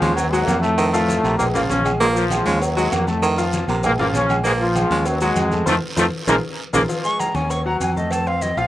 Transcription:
Already playing: F3 F4
0.01 D#2 G#3 C#4 C#5 C#6, cowbell, high conga, short guiro, maracas
0.16 F#2 F#3, cowbell, high conga, low agogo, long guiro, maracas
0.30 G#2 F#3 G#3 F#4 F#5, high conga, maracas
0.46 F2 A#2 A#3, cowbell, high conga, low timbale, low agogo, short guiro, maracas
0.61 A2 A3 A4 A5, short guiro, maracas
0.78 D#3, cowbell, high conga, low agogo, long guiro, maracas
0.92 A2 F3 A3 F4 F5, high conga, low agogo, maracas
1.08 cowbell, high conga, short guiro, maracas
1.23 A#1 C3 A#3 A#4 A#5, high conga, low agogo, short guiro, maracas
1.38 A#2 G#3 A#3 G#4 G#5, cowbell, high conga, low conga, low agogo, long guiro, maracas
1.53 A#2 C#3 F3 A#3 F4 F5, cowbell, high conga, low conga, maracas
1.68 A#1 C#3 C#4, cowbell, high conga, low timbale, low agogo, short guiro, maracas
1.85 G#3 G#4 G#5, high conga, low agogo, short guiro, maracas
1.99 G#2 F3 G#3 A#3 F4 F5, cowbell, high conga, long guiro, maracas
2.15 F3 F4, high conga, maracas
2.30 G#3 G#4 G#5, cowbell, high conga, low agogo, short guiro, maracas
2.46 D#2 G#3 C#4 C#5 C#6, cowbell, high conga, short guiro, maracas
2.61 F#2 F#3, cowbell, high conga, low agogo, long guiro, maracas
2.76 G#2 F#3 G#3 F#4 F#5, high conga, maracas
2.92 F2 A#2 A#3, cowbell, high conga, low timbale, low agogo, short guiro, maracas
3.07 A2 A3 A4 A5, high conga, short guiro, maracas
3.22 D#3, cowbell, high conga, low agogo, long guiro, maracas
3.38 F3 F4 F5, high conga, low agogo, maracas
3.53 cowbell, high conga, short guiro, maracas
3.68 A#1 C3 A#3 A#4 A#5, high conga, low agogo, short guiro, maracas
3.83 A#2 G#3 A#3 G#4 G#5, cowbell, high conga, low conga, low agogo, long guiro, maracas
3.99 G#1 A#2 C#3 F3 A#3 F4 F5, cowbell, high conga, low conga
4.13 A#1 C#3 C#4, cowbell, high conga, low timbale, low agogo, short guiro, maracas
4.29 G#3 G#4 G#5, high conga, low agogo, short guiro, maracas
4.44 G#2 F3 G#3 A#3 F4 F5, cowbell, high conga, long guiro, maracas
4.61 F3 F4, high conga
4.75 G#3 G#4 G#5, cowbell, high conga, low agogo, short guiro, maracas
4.90 D#2 G#3 C#4 C#5 C#6, cowbell, high conga, short guiro, maracas
5.06 F#2 F#3, cowbell, high conga, low agogo, long guiro, maracas
5.21 G#2 F#3 G#3 F#4 F#5, high conga, maracas
5.36 F2, cowbell, high conga, low agogo, short guiro, maracas
5.52 A3 A4 A5, high conga, short guiro, maracas
5.66 F2 D#3 F3 A3 F4 A4 C5, cowbell, high conga, high timbale, long guiro, maracas
5.96 F2 D#3 F3 A3 F4 A4 C5, cowbell, high conga, high timbale, long guiro, maracas
6.27 A#1 C#3 F3 G#3 A#3 F4 G#4 A#4, cowbell, high conga, high timbale, long guiro, maracas
6.73 A#1 C#3 F3 G#3 A#3 F4 G#4 A#4, cowbell, high conga, high timbale, long guiro, maracas
6.88 F3 F4 F5, cowbell, high conga, maracas
7.04 G#3 G#4 G#5 C#6, high conga, maracas
7.19 A#5, cowbell, high conga, low agogo, maracas
7.34 D#2 C#4 C#5 G#5 C#6, cowbell, high conga, maracas
7.50 C#6, cowbell, high conga, low agogo, maracas
7.66 F#3 F#4 F#5 A#5, high conga
7.80 F2 G#5, cowbell, high conga, low agogo, maracas
7.96 A3 A4 D#5 A5, high conga, maracas
8.11 A5, cowbell, high conga, low agogo, maracas
8.27 C4 C5 F5 C6, high conga, low agogo
8.41 D#5, cowbell, high conga, maracas
8.57 A#1 F3 F4 F5, high conga, low agogo, maracas

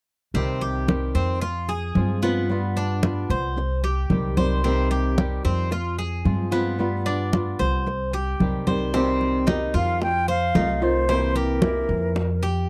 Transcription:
0.34 C2 C3 D#3 G3 C4 G4, high conga
0.61 G4, high conga
0.88 D#3 G3 C4 G4, high conga
1.15 F2 C4, high conga
1.42 F4, muted nylon-string guitar stroke, high conga
1.68 G#4, high conga
1.95 G2 F3 G#3 C4 F4, high conga
2.22 F3 G#3 B3 C4 F4, high conga
2.50 G3 B3 F4, high conga
2.76 D4, high conga
3.03 G3 B3 F4, high conga
3.30 C2 C5
3.57 muted nylon-string guitar stroke, high conga
3.84 G4, high conga
4.10 C2 D#3 G3 C4 G4, high conga
4.37 D#3 G3 C4 G4 C5, high conga
4.64 C3 D#3 G3 C4 G4, high conga
4.91 G4, high conga
5.18 D#3 G3 C4 G4, high conga
5.45 F2 C4, high conga
5.71 F4, muted nylon-string guitar stroke, high conga
5.99 G#4, high conga
6.25 G2 F3 G#3 C4 F4, high conga
6.51 F3 G#3 B3 C4 F4, high conga
6.79 G3 B3 F4, high conga
7.06 D4, high conga
7.33 G3 B3 F4, high conga
7.59 C2 C5
7.86 muted nylon-string guitar stroke, high conga
8.13 G4, high conga
8.40 C2 D#3 G3 C4 G4, high conga
8.67 D#3 G3 C4 G4 C5, high conga
8.94 C3 D#3 G3 C4 G4, high bongo, high conga
9.21 high bongo, high conga
9.47 D#3 G3 C4 D#4 G4, high bongo, high conga
9.74 F2 F4 F5, high bongo, high conga
10.01 G5, muted nylon-string guitar stroke, high bongo, high conga
10.28 C5 F5, high conga
10.55 C2 D#3 A3 C4 D#4 F4, high bongo, low bongo, high conga
10.82 D#3 A3 C4 F4 C5, high bongo, high conga
11.08 C3 E3 A#3 C4 E4 C5, high bongo, high conga
11.35 G4 A#4, high bongo, high conga
11.62 E3 A#3 C4 E4, high bongo, high conga
11.89 F2, high bongo
12.15 muted nylon-string guitar stroke, high bongo, high conga
12.42 G4, high conga

